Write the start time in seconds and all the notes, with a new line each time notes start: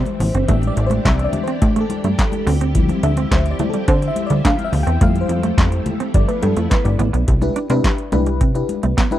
Already playing: E3 G3 E4 C5
0.05 closed hi-hat, high conga
0.20 A1 D4 G4, muted clean electric guitar stroke, open hi-hat, low conga
0.34 G1 C4, closed hi-hat
0.48 A1 G3 A3 B3 C4 D4 E5, kick, closed hi-hat, muted conga, low conga
0.62 closed hi-hat, high conga
0.67 D5
0.76 A1, muted clean electric guitar stroke, closed hi-hat, muted conga
0.86 C5, high conga
0.91 A3, closed hi-hat
1.05 C2 C4 E5, kick, snare, clap, closed hi-hat
1.19 muted clean electric guitar stroke, closed hi-hat
1.24 D5
1.33 closed hi-hat, muted conga, high conga, low conga
1.44 C5
1.48 C4, closed hi-hat
1.62 A2 G4, kick, closed hi-hat
1.76 A3, closed hi-hat
1.81 A4
1.90 muted clean electric guitar stroke, closed hi-hat, muted conga, high conga
2.04 G2 A3, closed hi-hat, high conga
2.18 muted clean electric guitar stroke, kick, snare, clap, closed hi-hat, muted conga
2.32 closed hi-hat, high conga
2.46 D2 F3 C4 E4, open hi-hat, muted conga, low conga
2.61 C4, closed hi-hat
2.74 F3 G3 C4 E4, kick, closed hi-hat, muted conga, low conga
2.89 muted clean electric guitar stroke, closed hi-hat, high conga
3.03 D2 D4 E5, closed hi-hat
3.17 C4, closed hi-hat, high conga
3.31 D2 C5, muted clean electric guitar stroke, kick, snare, clap, closed hi-hat, muted conga
3.46 closed hi-hat
3.51 D5
3.59 F3 G3 A3 C4 E4, closed hi-hat, muted conga, high conga, low conga
3.70 A4, closed hi-hat
3.74 G3
3.88 D3 C4 C5, kick, closed hi-hat, muted conga
4.02 muted clean electric guitar stroke, closed hi-hat
4.08 E5
4.16 closed hi-hat, high conga
4.27 D2 G3 D5, closed hi-hat
4.31 high conga
4.45 D3 A3 F5, kick, snare, clap, closed hi-hat, muted conga
4.58 closed hi-hat, high conga
4.64 E5
4.73 D2, muted clean electric guitar stroke, open hi-hat, muted conga, low conga
4.83 E2 C4 G5
4.87 closed hi-hat
5.01 F2 G3 A3 E4 F5, kick, closed hi-hat, muted conga, low conga
5.15 closed hi-hat, high conga
5.21 C5
5.29 F2, muted clean electric guitar stroke, closed hi-hat
5.43 A3, closed hi-hat, high conga
5.58 F2 C4, kick, snare, clap, closed hi-hat, muted conga
5.72 muted clean electric guitar stroke, closed hi-hat
5.86 closed hi-hat, muted conga, high conga, low conga
6.00 C4, closed hi-hat
6.14 G1 F3 A3 B3 E4 D5, kick, closed hi-hat, muted conga
6.28 A3 B4, closed hi-hat
6.42 G2 A4, muted clean electric guitar stroke, closed hi-hat, muted conga, high conga
6.57 F2 A3, closed hi-hat, high conga
6.70 B4, muted clean electric guitar stroke, kick, snare, clap, closed hi-hat
6.85 G1 D5, closed hi-hat, high conga
6.99 A1 B3, closed hi-hat, muted conga, low conga
7.13 B1 B3, closed hi-hat
7.28 C2, kick, closed hi-hat, muted conga, low conga
7.41 D4 E4 G4 B4, muted clean electric guitar stroke, closed hi-hat, high conga
7.56 D4, closed hi-hat, muted conga
7.70 C3 C4 D4 E4 G4 B4, closed hi-hat, high conga
7.84 muted clean electric guitar stroke, kick, snare, clap, closed hi-hat
7.98 closed hi-hat
8.12 C2 A3 D4 E4 G4 B4, closed hi-hat, muted conga, high conga, low conga
8.26 G3, closed hi-hat
8.41 C3 C4, kick, closed hi-hat, muted conga
8.55 D4 E4 G4 B4, muted clean electric guitar stroke, closed hi-hat
8.69 closed hi-hat, high conga
8.83 C2 A3, closed hi-hat
8.97 B3, kick, snare, clap, closed hi-hat, muted conga
9.11 D4 E4 G4 B4, closed hi-hat, high conga